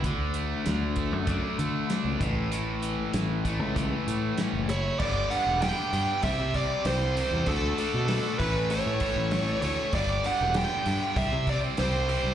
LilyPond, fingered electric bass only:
\new Staff \with { instrumentName = "Fingered electric bass" } { \clef bass \time 4/4 \key a \major \tempo 4 = 97 d,4 d,8. fis,8 r16 d8 r16 cis,16 a,,8~ | a,,4 a,,8. cis,8 r16 a,8 r16 fis,,8. | g,,8 r16 e,,8 r16 g,16 r16 c,16 c8 r16 c,8. e,16 | d,8 r16 b,8 r16 a,,8. a,16 r16 a,,8. d,16 r16 |
g,,8 r16 e,,8 r16 g,16 r16 c,16 c8 r16 c,8. c,16 | }